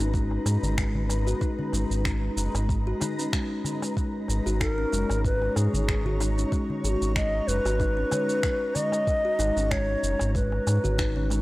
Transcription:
Already playing: G#3 D#4 B4 A#5
0.00 G#1 C#4, shaker
0.14 G#3, kick, shaker
0.31 darbuka ka
0.46 G#2, darbuka ka, darbuka tek, shaker
0.63 G#1, darbuka dum, shaker
0.78 G#3, finger snap, kick, shaker
0.95 darbuka dum
1.09 darbuka ka, darbuka tek, shaker
1.27 F#4, shaker
1.41 D#4, kick, shaker
1.59 C#4, darbuka dum
1.73 G#1 G#3, darbuka ka, shaker
1.90 G#1, shaker
2.05 finger snap, kick, shaker
2.37 F#1 G#3, shaker
2.54 G#1, darbuka tek, shaker
2.69 kick, darbuka ka, shaker
2.87 F#4
3.00 D#4, darbuka ka, darbuka tek, darbuka dum, shaker
3.19 C#4, shaker
3.33 G#3, finger snap, kick, shaker
3.65 darbuka ka, darbuka dum, shaker
3.82 darbuka ka, darbuka tek, shaker
3.96 G#3 C#5, kick, shaker
4.28 G#1, darbuka ka, darbuka tek, shaker
4.46 G#1 F#4, shaker
4.61 D#4 A#4, finger snap, kick, shaker
4.78 C#4
4.92 F#1 G#3, shaker
5.10 G#1, darbuka tek, shaker
5.25 B4, kick, shaker
5.42 darbuka ka
5.56 G#2 G#3 G#4, darbuka ka, darbuka tek, shaker
5.73 G#1, darbuka dum, shaker
5.88 finger snap, kick, shaker
6.05 F#4, darbuka dum
6.20 D#4, darbuka ka, darbuka tek, shaker
6.38 C#4, shaker
6.52 G#3, kick, shaker
6.70 darbuka dum
6.84 G#1 G#4, darbuka ka, shaker
6.89 F#4
7.02 G#1, shaker
7.16 G#3 D#5, finger snap, kick, shaker
7.48 F#1 B4, shaker
7.65 G#1 F#4, darbuka tek, shaker
7.80 D#4, kick, darbuka ka, shaker
7.97 C#4
8.11 G#3, darbuka ka, darbuka tek, darbuka dum, shaker
8.29 shaker
8.43 finger snap, kick, shaker
8.75 G#3 D#5, darbuka ka, darbuka dum, shaker
8.92 darbuka ka, darbuka tek, shaker
9.07 kick, shaker
9.25 F#4
9.39 G#1 D#4, darbuka ka, darbuka tek, shaker
9.56 G#1 C#4, shaker
9.71 G#3 C#5, finger snap, kick, shaker
10.03 F#1, shaker
10.19 G#1, darbuka tek, shaker
10.35 G#3 B4, kick, shaker
10.52 darbuka ka
10.67 G#2, darbuka ka, darbuka tek, shaker
10.84 G#1 F#4, darbuka dum, shaker
10.98 D#4, finger snap, kick, shaker
11.16 C#4, darbuka dum
11.30 G#3, darbuka ka, darbuka tek, shaker

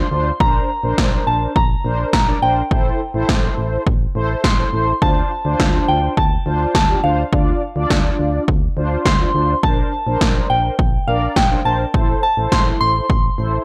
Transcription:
Already playing: C6
0.11 D2 D4 F4 C5
0.40 A#1 D4 A#4 C5 A#5, kick
0.84 A#1 D4 A#4 C5
0.98 A#1, kick, snare
1.27 A#1 A5
1.56 A#1 A#5, kick
1.85 A#1 D4 A#4 C5
2.13 A#1 A#5, kick, snare
2.28 D4 A#4 D5
2.42 A#1 D4 A#4 C5 G5
2.71 A1 E4 A4 C5, kick
3.14 A1 E4 A4 C5
3.29 A1, kick, snare
3.58 A1
3.87 A1, kick
4.15 A1 E4 A4 C5
4.44 A1 C6, kick, snare
4.59 E4 A4 C5
4.73 A1 E4 A4 C5
5.02 D2 D4 F4 C5 A5, kick
5.45 D2 D4 F4 C5
5.60 D2, kick, snare
5.88 D2 G5
6.17 D2 A5, kick
6.46 D2 D4 F4 C5
6.75 D2 A5, kick, snare
6.89 D4 F4 G4
7.04 D2 D4 F4 C5 F5
7.33 D2 D4 F4 D5, kick
7.76 D2 D4 F4 D5
7.90 D2, kick, snare
8.19 D2
8.48 D2, kick
8.77 D2 D4 F4 C5
9.06 D2 C6, kick, snare
9.20 D4 F4 C5
9.35 D2 D4 F4 C5
9.63 A#1 D4 A#4 C5 A5, kick
10.07 A#1 D4 A#4 C5
10.21 A#1, kick, snare
10.50 A#1 G5
10.79 A#1, kick
11.08 A#1 D4 A#4 D5 F5
11.36 A#1 G5, kick, snare
11.51 D4 A#4 C5
11.65 A#1 D4 A#4 C5 A5
11.94 A1 E4 A4 C5, kick
12.23 A5
12.37 A1 E4 A4 C5
12.52 A1 C6, kick, snare
12.81 A1 C6
13.10 A1, kick
13.38 A1 E4 A4 C5

